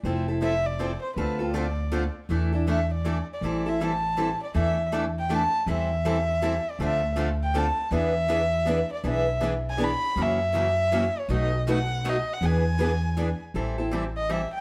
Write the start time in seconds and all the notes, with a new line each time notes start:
0.03 F1 F3 C4 E4 A4
0.28 C4 E4 A4
0.41 F3 C4 E4 A4 E5
0.66 D5
0.79 F3 C4 E4 A4
1.02 C5
1.16 D2 D3 F3 A3 C4 D4 F4 A4 B4
1.39 C4 F4 A4
1.54 D3 F3 A3 C4 D4 F4 A4 D5
1.92 D3 F3 A3 C4 D4 F4 A4
2.29 E2 E3 A3 D4 E4 A4
2.53 D4 E4 A4
2.67 E3 A3 D4 E4 A4 E5
2.94 D5
3.05 E3 A3 D4 E4 A4
3.33 D5
3.41 A1 E3 G3 C4 E4 A4
3.66 C4 E4 A4 E5
3.80 E3 G3 C4 E4 A4 A5
4.17 E3 G3 C4 E4 A4
4.43 D5
4.54 E2 E3 A3 D4 E4 A4 E5
4.92 E3 A3 D4 E4 A4
5.19 G5
5.29 E3 A3 D4 E4 A4
5.34 A5
5.66 E2 E3 G3 C4 E4 A4
5.72 E5
6.05 E3 G3 C4 E4 A4
6.42 E3 G3 C4 E4 A4
6.71 D5
6.79 D2 D3 F3 A3 C4 D4 F4 A4
6.85 E5
7.16 D3 F3 A3 C4 D4 F4 A4
7.43 G5
7.54 D3 F3 A3 C4 D4 F4 A4 A5
7.91 E2 E3 B3 D4 G#4 B4
7.95 E5
8.28 E3 B3 D4 G#4 B4
8.65 E3 B3 D4 G#4 B4
8.93 D5
9.04 B1 E3 B3 D4 G#4 B4
9.09 E5
9.41 E3 B3 D4 G#4 B4
9.70 G#5
9.77 E3 B3 D4 G#4 B4
9.84 B5
10.16 F#2 C#3 E3 F#3 A#3 C#4 E4 F#4 A#4
10.22 E5
10.52 C#3 E3 F#3 A#3 C#4 E4 F#4 A#4
10.91 C#3 E3 F#3 A#3 C#4 E4 F#4 A#4
11.20 C#5
11.28 B1 B2 F#3 A3 D#4 F#4 B4
11.34 D#5
11.67 B2 F#3 A3 D#4 F#4 B4
11.72 F#5
12.04 B2 F#3 A3 D#4 F#4 B4
12.10 D#5
12.34 F#5
12.41 E2 E3 B3 D4 G#4 B4
12.46 G#5
12.79 E3 B3 D4 G#4 B4
13.17 E3 B3 D4 G#4 B4
13.54 A1 E3 G3 C4 E4 A4
13.78 C4 E4 A4
13.91 E3 G3 C4 E4 A4
14.17 D#5
14.29 E3 G3 C4 E4 A4 E5
14.54 G5